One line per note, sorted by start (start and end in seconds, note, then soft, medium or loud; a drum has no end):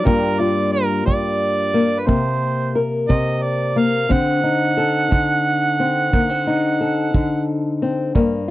0.05 1.05 G2 medium
0.05 2.04 G3 medium
0.05 1.73 A#3 medium
0.05 0.39 F4 medium
0.05 0.41 A#4 medium
0.05 kick medium
0.39 2.05 F4 medium
0.39 0.72 D5 medium
0.72 1.04 A#4 medium
1.06 2.08 G2 medium
1.06 2.00 D5 loud
1.06 kick medium
1.74 2.06 A#3 medium
1.99 2.08 B4 medium
2.07 3.08 C3 medium
2.07 3.75 A#3 medium
2.07 2.75 C5 medium
2.07 kick medium
2.75 4.07 A#4 medium
3.08 4.09 C3 medium
3.08 3.44 D#5 medium
3.08 kick medium
3.43 3.80 D5 medium
3.76 4.10 A#3 medium
3.76 4.13 F5 medium
4.09 5.10 D3 medium
4.09 5.78 C4 medium
4.09 7.49 F#5 loud
4.09 kick medium
4.43 6.46 D#4 medium
4.77 6.80 A4 medium
5.11 6.12 D3 medium
5.11 kick medium
5.80 6.13 C4 medium
6.13 7.13 D3 medium
6.13 6.30 A#3 medium
6.13 kick medium
6.30 7.81 C4 medium
6.47 8.12 D#4 medium
6.81 8.12 A4 medium
7.14 8.11 D3 medium
7.14 kick medium
7.82 8.12 C4 medium
8.15 8.51 G2 medium
8.15 8.51 A#3 medium
8.15 kick medium